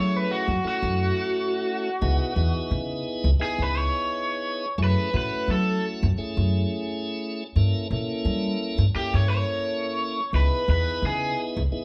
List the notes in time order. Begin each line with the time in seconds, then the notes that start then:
Already playing: F#3 A3 C#4 E4 G#4 C#5
0.16 B4
0.31 F#4
0.48 F#2
0.63 A3 C#4 E4 A4, muted upright bass stroke
0.68 F#4
0.82 F#2
2.01 C#2 B3 D#4 E4 G#4
2.35 E2 B3 D#4 E4 G#4
2.71 C#3
3.24 C#2
3.39 B3 D#4 E4 G#4, muted upright bass stroke
3.58 C#2 B4
3.78 C#5
4.78 F#2 A3 C#4 E4 G#4
4.84 B4
5.14 A2 A3 C#4 E4 F#4 B4
5.48 F#3 A4
6.03 F#2
6.18 A3 C#4 E4 G#4, muted upright bass stroke
6.37 F#2
7.56 G2 A#3 C#4 E4 A4
7.90 A#2 A#3 C#4 E4 A4
8.25 G3
8.78 G2
8.94 A#3 C#4 E4 G4 A4, muted upright bass stroke
9.14 G2 C#5
9.30 C#5
10.33 C#2 B3 D#4 E4 G#4 B4
10.68 E2 B3 D#4 E4 G#4 B4
11.02 C#3
11.06 G#4
11.57 C#2
11.72 B3 D#4 E4 G#4, muted upright bass stroke